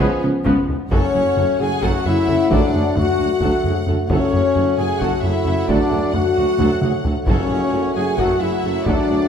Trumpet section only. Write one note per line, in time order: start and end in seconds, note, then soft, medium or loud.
0.00 0.22 G#4 loud
0.91 1.55 C#4 medium
1.60 1.82 G#4 medium
1.83 2.04 F#4 medium
2.06 2.50 E4 medium
2.51 2.95 D4 medium
2.96 3.86 F#4 medium
4.10 4.73 C#4 medium
4.77 5.00 G#4 medium
5.00 5.22 F#4 medium
5.23 5.67 E4 medium
5.68 6.14 D4 medium
6.14 7.05 F#4 medium
7.28 7.91 C#4 medium
7.95 8.17 G#4 medium
8.19 8.41 F#4 medium
8.41 8.86 E4 medium
8.86 9.28 D4 medium